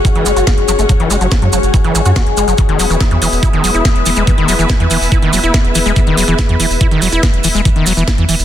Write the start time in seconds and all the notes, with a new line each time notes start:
Already playing: G#3 C#4 F#4 G#4 C#5 F#5
0.05 E3, kick, closed hi-hat, maracas
0.15 F#1 E3, closed hi-hat
0.26 F#1 G#3, closed hi-hat, maracas
0.36 F#1 F#4, closed hi-hat, maracas
0.47 F#4, kick, snare, closed hi-hat, maracas
0.58 F#1, closed hi-hat
0.68 F#1 F#3, closed hi-hat, maracas
0.79 F#1 A3, closed hi-hat, maracas
0.89 F#3, kick, closed hi-hat, maracas
1.00 F#1 E3, closed hi-hat
1.10 F#1 G#3, closed hi-hat, maracas
1.21 F#1 F#3, closed hi-hat, maracas
1.31 F#4, kick, snare, closed hi-hat, maracas
1.42 F#2 F#3, closed hi-hat
1.53 F#1 F#3, closed hi-hat, maracas
1.63 F#1, closed hi-hat, maracas
1.74 E3, kick, closed hi-hat, maracas
1.84 F#1 E3, closed hi-hat
1.95 G#1 E3, closed hi-hat, maracas
2.05 F#2 F#4, closed hi-hat, maracas
2.16 F#4, kick, snare, closed hi-hat, maracas
2.27 F#1, closed hi-hat
2.37 F#1 G#3, closed hi-hat, maracas
2.48 F#1 F#3, closed hi-hat, maracas
2.58 E3 B3, kick, closed hi-hat, maracas
2.68 E1 D#3 E4, closed hi-hat
2.77 E1 F#3 B4 E5, open hi-hat, maracas
2.90 E1 E3, closed hi-hat, maracas
3.01 E4, kick, snare, closed hi-hat, maracas
3.11 E2 E3, closed hi-hat
3.22 E1 E3, open hi-hat, maracas
3.32 E1, maracas
3.43 E4, kick, closed hi-hat, maracas
3.53 E1 D#3, closed hi-hat
3.64 E1 F#3, open hi-hat, maracas
3.74 E1 E4, closed hi-hat, maracas
3.85 E4, kick, snare, closed hi-hat, maracas
3.96 E1, closed hi-hat
4.06 E1 E3, open hi-hat, maracas
4.16 E1 G#3, maracas
4.27 E3, kick, closed hi-hat, maracas
4.38 E1 D#3, closed hi-hat
4.48 E1 F#3, open hi-hat, maracas
4.59 E1 E3, closed hi-hat, maracas
4.69 E4, kick, snare, closed hi-hat, maracas
4.80 E2 E3, closed hi-hat
4.90 E1 E3, open hi-hat, maracas
5.01 E1, maracas
5.12 E4, kick, closed hi-hat, maracas
5.22 E1 D#3, closed hi-hat
5.33 E1 F#3, open hi-hat, maracas
5.43 E1 E4, closed hi-hat, maracas
5.54 E4, kick, snare, closed hi-hat, maracas
5.65 E1, closed hi-hat
5.75 E1 E3, open hi-hat, maracas
5.86 E1 G#3, closed hi-hat, maracas
5.96 E3, kick, closed hi-hat, maracas
6.07 E1 D#3, closed hi-hat
6.17 E1 F#3, open hi-hat, maracas
6.28 E1 E3, maracas
6.38 E4, kick, snare, closed hi-hat, maracas
6.49 E2 E3, closed hi-hat
6.60 E1 E3, open hi-hat, maracas
6.70 E1, maracas
6.81 E4, kick, closed hi-hat, maracas
6.91 E1 D#3, closed hi-hat
7.02 E1 F#3, open hi-hat, maracas
7.12 E1 E4, closed hi-hat, maracas
7.23 E4, kick, snare, closed hi-hat, maracas
7.34 E1, closed hi-hat
7.44 E1 E3, open hi-hat, maracas
7.55 E1 G#3, closed hi-hat, maracas
7.65 E3, kick, closed hi-hat, maracas
7.76 E1 D#3, closed hi-hat
7.86 E1 F#3, open hi-hat, maracas
7.97 E1 E3, closed hi-hat, maracas
8.08 E4, kick, snare, closed hi-hat, maracas
8.18 E2 E3, closed hi-hat
8.29 E1 E3, open hi-hat, maracas
8.39 E1, maracas